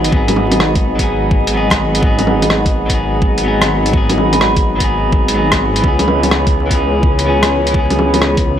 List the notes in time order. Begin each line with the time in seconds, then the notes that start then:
Already playing: G#1 B3 D#4 G#4 D#5 F#5 B5
0.04 closed hi-hat
0.09 F#3 B3, kick
0.14 D#4 G#4
0.28 closed hi-hat, low bongo
0.36 low bongo
0.52 closed hi-hat, low bongo
0.60 cross-stick
0.75 kick, closed hi-hat
0.96 F#3 B3, kick, closed hi-hat
1.01 D#4 G#4
1.31 kick
1.47 closed hi-hat
1.53 F#3 B3 D#4 G#4
1.70 kick, cross-stick, closed hi-hat
1.95 F#3, closed hi-hat
2.01 B3 D#4, kick
2.07 G#4
2.19 closed hi-hat, low bongo
2.27 low bongo
2.42 closed hi-hat, low bongo
2.50 cross-stick
2.66 kick, closed hi-hat
2.86 F#3 B3, kick, closed hi-hat
2.92 D#4 G#4
3.22 kick
3.38 closed hi-hat
3.43 F#3 B3 D#4
3.48 G#4
3.61 cross-stick, closed hi-hat
3.86 F#3, closed hi-hat
3.92 B3 D#4, kick
3.97 G#4
4.09 closed hi-hat, low bongo
4.18 low bongo
4.33 closed hi-hat, low bongo
4.41 cross-stick
4.57 kick, closed hi-hat
4.76 F#3 B3
4.80 D#4 G#4, kick, closed hi-hat
5.12 kick
5.28 closed hi-hat
5.34 F#3 B3 D#4
5.38 G#4
5.52 kick, cross-stick, closed hi-hat
5.76 closed hi-hat
5.80 C#2 E3 B3 G#4 C#5, kick
5.85 C#4 G#4
5.99 closed hi-hat, low bongo
6.08 low bongo
6.23 closed hi-hat, low bongo
6.31 cross-stick
6.47 kick, closed hi-hat
6.66 E3 B3
6.71 C#4 G#4, kick, closed hi-hat
7.03 kick
7.19 closed hi-hat
7.25 E3 B3 C#4 G#4
7.43 cross-stick, closed hi-hat
7.67 closed hi-hat
7.71 E3 B3, kick
7.76 C#4 G#4
7.90 closed hi-hat, low bongo
7.99 low bongo
8.14 closed hi-hat, low bongo
8.22 cross-stick
8.37 kick, closed hi-hat